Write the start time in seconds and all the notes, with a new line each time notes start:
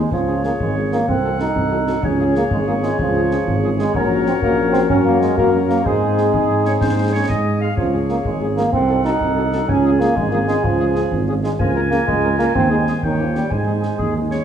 Already playing: G#3
0.11 C#2 F3 G#4 C#5, concert bass drum
0.28 G#3 C#4 F4 G#4
0.43 G#3 A#3 C#4 F4 G#4, snare
0.60 G#1 G#3, concert bass drum
0.75 G#3 C#4 F4 G#4
0.92 G#3 A#3 C#4 F4 G#4, snare
1.08 C2 C4 A4 F#5, concert bass drum
1.23 F#3 D#4 F#4 A4
1.40 F#3 D#4 F#4 A4, snare
1.56 C2, concert bass drum
1.71 F#3 D#4 F#4 A4
1.87 F#3 D#4 F#4 A4, snare
2.03 C#2 C#4 G#4 C#5, concert bass drum
2.19 G#3 C#4 F4 G#4
2.35 G#3 A#3 C#4 F4 G#4, snare
2.51 G#1 G#3, concert bass drum
2.66 G#3 A#3 C#4 F4 G#4
2.82 G#3 C#4 F4 G#4, snare
2.99 C#2 F3, concert bass drum
3.15 G#3 C#4 F4 G#4
3.31 G#3 C#4 F4 G#4, snare
3.46 G#1, concert bass drum
3.63 G#3 C#4 F4 G#4
3.79 G#3 C#4 F4 G#4, snare
3.94 A#1 F#3 C#4 F#4 A#4 C#5, concert bass drum
4.26 C4, snare
4.42 A#1 F#3 A#3 C#4 F#4 A#4, concert bass drum
4.72 C4, snare
4.89 F#2 F#3 C#4 F#4 A#4, concert bass drum
5.05 A#3
5.21 G#3, snare
5.37 F#2 F#3 A#3 C#4 F#4 A#4, concert bass drum
5.53 F#3
5.69 A#3, snare
5.84 G#2 G#3 C4 D#4 G#4 C5, concert bass drum
6.18 snare
6.33 G#2 G#4, concert bass drum
6.65 C#5, snare
6.81 G#2 C5, concert bass drum, snare
7.12 C#5
7.28 G#2 D#5, concert bass drum, snare
7.61 G#3 F5
7.76 C#2 F3 G#4 C#5, concert bass drum
7.93 G#3 C#4 F4 G#4
8.09 G#3 A#3 C#4 F4 G#4, snare
8.25 G#1 G#3, concert bass drum
8.41 G#3 C#4 F4 G#4
8.56 G#3 A#3 C#4 F4 G#4, snare
8.72 C2 C4 A4 F#5, concert bass drum
8.90 F#3 D#4 F#4 A4
9.05 F#3 D#4 F#4 A4, snare
9.21 C2, concert bass drum
9.37 F#3 D#4 F#4 A4
9.53 F#3 D#4 F#4 A4, snare
9.68 C#2 C#4 G#4 G#5, concert bass drum
9.85 G#3 C#4 F4 G#4
10.00 G#3 A#3 C#4 F4 G#4, snare
10.16 G#1 G#3, concert bass drum
10.32 G#3 A#3 C#4 F4 G#4
10.48 G#3 C#4 F4 G#4, snare
10.64 C#2 F3, concert bass drum
10.80 G#3 C#4 F4 G#4
10.95 G#3 C#4 F4 G#4, snare
11.12 G#1, concert bass drum
11.27 G#3 C#4 F4 G#4
11.43 G#3 C#4 F4 G#4, snare
11.58 C#2 F3 A#4 G#5, concert bass drum
11.74 G#3 C#4 F4 A#4
11.90 G#3 A#3 C#4 F4 A#4, snare
12.07 C#2 G#3, concert bass drum
12.23 G#3 C#4 F4 A#4
12.38 G#3 A#3 C#4 F4 A#4, snare
12.55 D#2 C4 C5, concert bass drum
12.70 G#3 C4 D#4 G#4
12.86 G#3 C4 D#4 G#4, snare
13.03 D#2 D#3 C#5 G5, concert bass drum
13.18 F3 A#3 C#4 D#4 G4
13.35 G3 A#3 C#4 D#4 G4, snare
13.50 G#2 G#3 C5 G#5, concert bass drum
13.66 G#3 C4 D#4 G#4
13.81 G#3 C4 D#4 G#4, snare
13.99 D#2 G#4, concert bass drum
14.13 G#3 C4 D#4 G#4
14.29 G#3 C4 D#4 G#4 C#5, snare